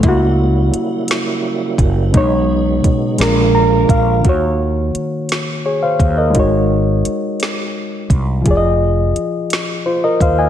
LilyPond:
<<
  \new Staff \with { instrumentName = "Reed electric piano" } { \time 6/8 \key bes \phrygian \tempo 4. = 57 << { r2. | r2 bes''8 f''8 | \key ees \dorian r2 <aes' des''>16 <c'' f''>8 <bes' ees''>16~ | <bes' ees''>16 r2 r8. |
r2 <f' c''>16 <bes' ees''>16 <c'' f''>16 <ees'' aes''>16 | } \\ { <bes fes' ges'>2. | <ces aes ees' des''>4. <bes, aes d' bes'>4. | <ees bes ges' des''>2. | <aes ees' ges' des''>2. |
<f f' aes' d'' ees''>2. | } >> }
  \new Staff \with { instrumentName = "Tonewheel organ" } { \time 6/8 \key bes \phrygian <bes fes'>2. | <ces' ees'>4. <bes f'>4. | \key ees \dorian r2. | r2. |
r2. | }
  \new Staff \with { instrumentName = "Tonewheel organ" } { \clef bass \time 6/8 \key bes \phrygian << { g2. | aes2. | \key ees \dorian r2. | r2. |
r2. | } \\ { <des ges>2.~ | <des ges>4. <d f>4. | r2. | r2. |
r2. | } >> }
  \new Staff \with { instrumentName = "Fretless electric bass" } { \clef bass \time 6/8 \key bes \phrygian des,4 r4. ges,,8 | ces,4 r8 bes,,4 bes,,8 | \key ees \dorian ees,4 r4. ees,8 | aes,,4 r4. c,8 |
f,,4 r4. ees,8 | }
  \new DrumStaff \with { instrumentName = "Drums" } \drummode { \time 6/8 <hh bd>4 hh8 <hh sn>4 <hh bd>8 | <hh bd>4 <hh bd>8 <hh sn>4 <hh bd>8 | <hh bd>4 hh8 <hh sn>4 <hh bd>8 | <hh bd>4 hh8 <hh sn>4 <hh bd>8 |
<hh bd>4 hh8 <hh sn>4 <hh bd>8 | }
>>